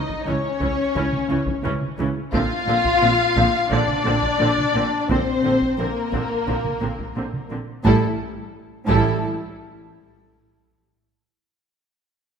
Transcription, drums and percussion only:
0.09 taiko medium
0.61 taiko medium
0.95 taiko medium
1.12 taiko mid medium
1.46 taiko medium
1.81 taiko mid soft
2.33 taiko medium
2.85 taiko medium
3.36 taiko medium
3.71 taiko medium
3.88 taiko mid medium
4.22 taiko medium
4.58 taiko mid medium
5.09 taiko medium
5.61 taiko medium
6.13 taiko medium
6.47 taiko medium
6.65 taiko mid medium
6.99 taiko medium
7.34 taiko mid soft
7.85 taiko medium
8.88 taiko medium

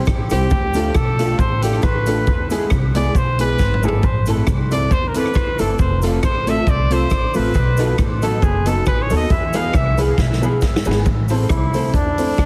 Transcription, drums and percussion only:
0.05 kick loud
0.05 cross-stick loud
0.05 cabasa medium
0.30 cross-stick medium
0.30 closed hi-hat medium
0.30 cabasa medium
0.50 kick loud
0.50 cabasa medium
0.74 closed hi-hat loud
0.74 cabasa medium
0.94 kick loud
0.94 cross-stick loud
0.94 cabasa medium
1.19 closed hi-hat medium
1.19 cabasa medium
1.39 kick loud
1.39 cabasa medium
1.62 closed hi-hat medium
1.62 cabasa medium
1.73 cross-stick medium
1.82 kick loud
1.82 cross-stick loud
1.82 cabasa medium
2.06 closed hi-hat medium
2.06 cabasa medium
2.27 kick loud
2.27 cabasa medium
2.50 closed hi-hat medium
2.50 cabasa medium
2.70 kick loud
2.70 cross-stick loud
2.70 cabasa medium
2.95 closed hi-hat medium
2.95 cabasa medium
3.15 kick loud
3.15 cabasa medium
3.39 closed hi-hat loud
3.39 cabasa medium
3.58 kick loud
3.58 snare medium
3.58 cabasa medium
3.74 mid tom medium
3.83 cabasa medium
3.88 floor tom loud
4.03 kick loud
4.03 cabasa medium
4.26 closed hi-hat medium
4.26 cabasa medium
4.47 kick loud
4.47 cross-stick loud
4.47 cabasa medium
4.71 closed hi-hat medium
4.71 cabasa medium
4.91 kick loud
4.91 cabasa medium
5.14 closed hi-hat medium
5.14 cabasa medium
5.26 cross-stick medium
5.34 kick loud
5.34 cross-stick loud
5.34 cabasa medium
5.59 closed hi-hat medium
5.59 cabasa medium
5.78 kick loud
5.78 cabasa medium
6.02 closed hi-hat medium
6.02 cabasa medium
6.23 kick loud
6.23 cross-stick loud
6.23 cabasa medium
6.47 closed hi-hat medium
6.47 cabasa medium
6.67 kick loud
6.67 cabasa medium
6.91 closed hi-hat medium
6.91 cabasa medium
7.10 kick loud
7.10 cross-stick loud
7.10 cabasa medium
7.34 open hi-hat soft
7.34 cabasa medium
7.54 kick loud
7.54 hi-hat pedal medium
7.54 cabasa medium
7.77 closed hi-hat medium
7.77 cabasa medium
7.98 kick loud
7.98 cross-stick loud
7.98 cabasa medium
8.22 closed hi-hat medium
8.22 cabasa medium
8.42 kick loud
8.42 cabasa medium
8.66 closed hi-hat loud
8.66 cabasa medium
8.86 kick medium
8.86 cross-stick loud
8.86 cabasa medium
9.10 open hi-hat medium
9.10 cabasa medium
9.30 kick loud
9.30 hi-hat pedal medium
9.30 cabasa medium
9.53 closed hi-hat medium
9.53 cabasa medium
9.73 kick loud
9.73 cross-stick loud
9.73 cabasa medium
9.98 closed hi-hat medium
9.98 cabasa medium
10.18 kick loud
10.18 snare medium
10.18 cabasa medium
10.33 snare medium
10.43 cabasa medium
10.61 kick loud
10.61 snare medium
10.61 cabasa medium
10.76 snare loud
10.85 cabasa medium
10.91 snare loud
11.05 kick loud
11.05 cabasa medium
11.28 open hi-hat medium
11.28 cabasa medium
11.49 kick loud
11.49 cross-stick loud
11.49 hi-hat pedal medium
11.49 cabasa medium
11.74 open hi-hat medium
11.74 cabasa medium
11.94 kick loud
11.94 hi-hat pedal medium
11.94 cabasa medium
12.18 open hi-hat loud
12.18 cabasa medium
12.37 kick loud
12.37 cross-stick loud
12.37 cabasa medium

